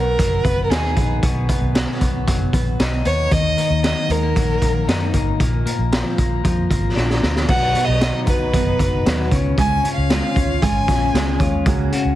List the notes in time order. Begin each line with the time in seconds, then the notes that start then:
Already playing: B1 B2 F#3 B3 D#4 A#4
0.18 F#1 F#3, kick, closed hi-hat
0.44 F#1 B3 B4, kick, closed hi-hat
0.64 A#4
0.70 D#2 D#4 G#4, snare, closed hi-hat
0.96 A#1 B3, kick, closed hi-hat
1.23 B1 B2, kick, closed hi-hat
1.49 B3, kick, closed hi-hat
1.61 B1
1.75 F#3, snare, closed hi-hat
2.01 B1 B3, kick, closed hi-hat
2.28 F#1 F#3, kick, closed hi-hat
2.53 A#1 B3, kick, closed hi-hat
2.79 B1 D#4, snare, closed hi-hat
3.05 D#2 B3 C#5, closed hi-hat
3.31 D#2 D#3 D#5, kick, closed hi-hat
3.57 A#3, closed hi-hat
3.70 D#2
3.84 F#3 D#5, snare, closed hi-hat
4.09 D#2 G#3 A#4, closed hi-hat
4.23 A#3
4.36 A#1 F#3, kick, closed hi-hat
4.62 A#1 A#3, kick, closed hi-hat
4.87 F#2 D#4, snare, closed hi-hat
5.14 G#1 A#3, kick, closed hi-hat
5.40 A#1 A#2, kick, closed hi-hat
5.66 A#3, closed hi-hat
5.79 A#1
5.92 F3, snare, closed hi-hat
6.18 A#1 A#3, kick, closed hi-hat
6.44 F2 F3, kick, closed hi-hat
6.70 G#1 A#3, kick, closed hi-hat
6.96 A#1 D4, snare
7.10 snare
7.22 D2 A#3, snare
7.36 snare
7.49 B1 B2 D#3 F#3 B3 F#4 B4 F#5, kick, crash
7.74 F#3 B3 F#4 B4, closed hi-hat
7.85 B1 D#5
8.01 F#3 B3 D#4 F#4 B4, snare, closed hi-hat
8.27 B1 F#3 B3 F#4 B4, kick, closed hi-hat
8.54 F#1 B2 D#3 F#3 B3 D#4 F#4 B4, kick, closed hi-hat
8.79 F#1 F#3 B3 F#4 B4, kick, closed hi-hat
9.05 D#2 F#3 B3 F#4 B4, snare, closed hi-hat
9.31 C#2 C#3 C#4 F4 C#5, kick, closed hi-hat
9.58 C#2 C#3 G#3 C#4 F4 C#5 G#5, kick, closed hi-hat
9.83 C#4 F4 C#5, closed hi-hat
9.94 C#2 F5
10.09 G#3 C#4 F4 C#5, snare, closed hi-hat
10.36 C#2 C#4 F4 C#5, kick, closed hi-hat
10.62 G#1 C#3 G#3 C#4 F4 C#5 G#5, kick, closed hi-hat
10.88 A#1 C#4 F4 C#5, kick, snare, closed hi-hat
11.13 C#2 G#3 C#4 F4 C#5, snare, closed hi-hat
11.39 D#2 C#4 F4 C#5, kick, closed hi-hat
11.66 C#2 C#3 A#3 C#4 F#4 G#4, kick, closed hi-hat
11.91 C#4 F#4 G#4, closed hi-hat
12.05 C#2